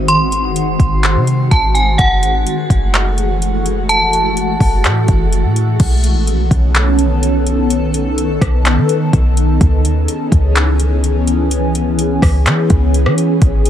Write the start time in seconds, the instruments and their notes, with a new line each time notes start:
Already playing: 808-style bass G#1, ambient pad D#3 G#3 C4 F#4
0.08 synth bell C6, closed hi-hat
0.32 closed hi-hat
0.56 closed hi-hat
0.80 808-style bass G#1, kick, closed hi-hat
1.03 clap, closed hi-hat
1.16 808-style bass C3
1.27 closed hi-hat
1.51 808-style bass G#1, synth bell A5, kick, closed hi-hat
1.75 synth bell G#5, closed hi-hat
1.98 808-style bass F#1, ambient pad E3 A3, synth bell F#5, kick, closed hi-hat
2.23 808-style bass G#1, closed hi-hat
2.47 closed hi-hat
2.70 808-style bass F#1, kick, closed hi-hat
2.94 clap, closed hi-hat
3.18 closed hi-hat
3.42 closed hi-hat
3.66 closed hi-hat
3.89 synth bell A5, closed hi-hat
4.13 closed hi-hat
4.37 closed hi-hat
4.60 808-style bass F#1, kick, open hi-hat
4.84 808-style bass A2, clap, closed hi-hat
5.08 808-style bass F#1, kick, closed hi-hat
5.32 closed hi-hat
5.44 808-style bass A2
5.56 closed hi-hat
5.79 808-style bass B1, ambient pad D#3 B3 C#4 A4, kick, closed hi-hat, crash
6.04 closed hi-hat
6.16 808-style bass A1
6.27 closed hi-hat
6.33 808-style bass B1
6.51 808-style bass B1, kick, closed hi-hat
6.75 clap, closed hi-hat
6.99 closed hi-hat
7.23 closed hi-hat
7.47 closed hi-hat
7.70 ambient pad D#4, closed hi-hat
7.94 closed hi-hat
8.18 closed hi-hat
8.41 808-style bass B1, kick, cross-stick, closed hi-hat
8.65 clap, closed hi-hat
8.77 808-style bass D#3
8.89 closed hi-hat
9.13 808-style bass B1, kick, closed hi-hat
9.37 closed hi-hat
9.61 808-style bass C#2, ambient pad E3 B3 C#4 G#4, kick, closed hi-hat
9.85 808-style bass D#2, closed hi-hat
10.08 closed hi-hat
10.32 808-style bass C#2, kick, closed hi-hat
10.56 clap, closed hi-hat
10.80 closed hi-hat
11.04 closed hi-hat
11.27 closed hi-hat
11.51 closed hi-hat
11.75 closed hi-hat
11.99 closed hi-hat
12.22 808-style bass C#2, kick, cross-stick, open hi-hat
12.46 808-style bass E3, clap, closed hi-hat
12.70 808-style bass C#2, kick, closed hi-hat
12.94 closed hi-hat
13.06 808-style bass E3, cross-stick
13.18 closed hi-hat
13.41 808-style bass G#1, ambient pad F#3 C4 D#4, kick, closed hi-hat
13.65 closed hi-hat